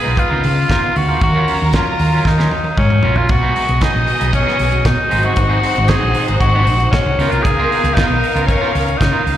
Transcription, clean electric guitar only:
0.04 B3 D#4 F4 A#4
0.17 muted clean electric guitar stroke
0.30 B3 D#4 F4 A#4
0.44 muted clean electric guitar stroke
0.57 muted clean electric guitar stroke
0.70 B3 D#4 F4 A#4
0.83 muted clean electric guitar stroke
0.96 muted clean electric guitar stroke
1.08 B3 D#4 F4 A#4
1.34 F#3 C#4 F4 A#4
1.47 F#3 C#4 F4 A#4
1.60 muted clean electric guitar stroke
1.73 F#3 C#4 F4 A#4
1.87 muted clean electric guitar stroke
2.00 muted clean electric guitar stroke
2.13 F#3 C#4 F4 A#4
2.38 F#3 C#4 F4 A#4
2.51 muted clean electric guitar stroke
2.65 muted clean electric guitar stroke
2.78 muted clean electric guitar stroke
2.90 muted clean electric guitar stroke
3.03 F#3 C#4 F4 A#4
3.17 F#3 C#4 F4 A#4
3.30 muted clean electric guitar stroke
3.41 F#3 B3 D#4 G#4
3.55 F#3 B3 D#4 G#4
3.68 muted clean electric guitar stroke
3.80 F#3 B3 D#4 G#4
3.94 muted clean electric guitar stroke
4.07 muted clean electric guitar stroke
4.19 F#3 B3 D#4 G#4
4.33 muted clean electric guitar stroke
4.46 F#3 B3 D#4 G#4
4.72 muted clean electric guitar stroke
4.85 muted clean electric guitar stroke
4.97 muted clean electric guitar stroke
5.10 F#3 C4 D#4 G#4
5.24 F#3 C4 D#4 G#4
5.36 muted clean electric guitar stroke
5.49 F#3 C4 D#4 G#4
5.62 F#3 C4 D#4 G#4
5.76 muted clean electric guitar stroke
5.89 F#3 C4 D#4 G#4
6.02 muted clean electric guitar stroke
6.15 muted clean electric guitar stroke
6.28 F#3 C4 D#4 G#4
6.41 muted clean electric guitar stroke
6.55 F#3 C4 D#4 G#4
6.80 muted clean electric guitar stroke
6.93 muted clean electric guitar stroke
7.06 muted clean electric guitar stroke
7.19 B3 D#4 F4 A#4
7.33 B3 D#4 F4 A#4
7.46 muted clean electric guitar stroke
7.59 B3 D#4 F4 A#4
7.71 B3 D#4 F4 A#4
7.84 muted clean electric guitar stroke
7.97 B3 D#4 F4 A#4
8.10 muted clean electric guitar stroke
8.23 muted clean electric guitar stroke
8.35 B3 D#4 F4 A#4
8.61 B3 D#4 F4 A#4
8.74 muted clean electric guitar stroke
8.87 muted clean electric guitar stroke
9.00 muted clean electric guitar stroke
9.12 B3 D#4 F4 A#4
9.25 muted clean electric guitar stroke

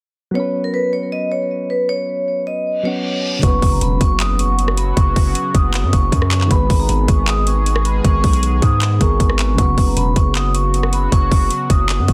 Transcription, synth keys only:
0.31 F#3 B3
0.37 C#4 B4
2.83 F#3 B3 C#4
2.87 F#4
3.39 C#3 F#3
3.43 B3 F#4
3.47 B4
6.47 D#3 G#3
6.51 B3 G#4
6.55 B4
8.99 D#3 G#3 B3 G#4
9.03 A#4
9.54 C#3 F#3
9.58 B3 F#4
9.63 B4

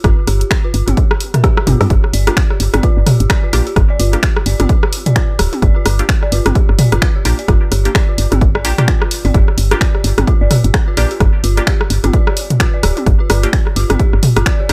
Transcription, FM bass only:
0.04 G1
0.27 G1
0.74 G1
0.88 G1
1.67 G1
1.81 G2
1.90 G1
2.13 G1
2.60 G1
2.74 G1
2.97 G1
3.20 G1
3.53 A#1
3.76 G1
4.00 G1
4.46 G1
4.60 G1
5.39 D1
5.62 G1
5.86 G1
6.32 G1
6.46 G1
6.69 G1
6.92 G1
7.25 A#1
7.48 G1
7.72 G1
8.18 G1
8.32 G1
8.65 A#1
9.25 G1
9.34 G1
9.58 G1
10.04 G1
10.18 G1
10.41 G1
10.64 G1
10.97 A#1
11.20 G1
11.44 G1
11.90 G1
12.04 G1
12.83 D1
13.06 G1
13.30 G1
13.76 G1
13.90 G1
14.13 G1
14.36 G1
14.69 A#1

